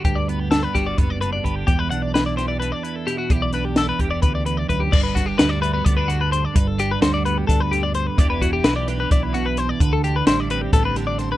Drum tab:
CC |-------|-------|-------|x------|
HH |xxxxxxx|xxxxxxx|xxxxxxx|-xxxxxx|
SD |--ooo--|--oo--o|-oo----|-oo-o--|
BD |o--oo-o|o------|o--oo-o|oo--o--|

CC |-------|-------|-------|
HH |xxxxxxx|xxxxxxx|xxxxxxx|
SD |--o----|--ooooo|--o-ooo|
BD |o---o--|oo--o--|o---o--|